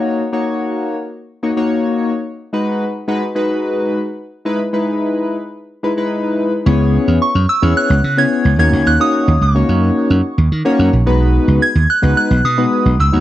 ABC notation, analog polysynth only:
X:1
M:4/4
L:1/16
Q:1/4=109
K:D#phr
V:1 name="Analog polysynth"
[A,DFc] z [A,DFc]4- [A,DFc] z3 [A,DFc] [A,DFc]4 z | z2 [G,DFB]2 z2 [G,DFB] z [G,DFB]4- [G,DFB] z3 | [G,DEB] z [G,DEB]4- [G,DEB] z3 [G,DEB] [G,DEB]4 z | [B,CEGc]4 z3 [B,CEGc]2 z2 [B,CEGc]2 z [A,CDFc]2 |
z [A,CDFc]2 z2 [A,CDFc]4- [A,CDFc] z3 [A,CDFc]2 z | [G,B,DFB]4 z3 [G,B,DFB]2 z2 [G,B,DFB]2 z2 [G,B,DFc] |]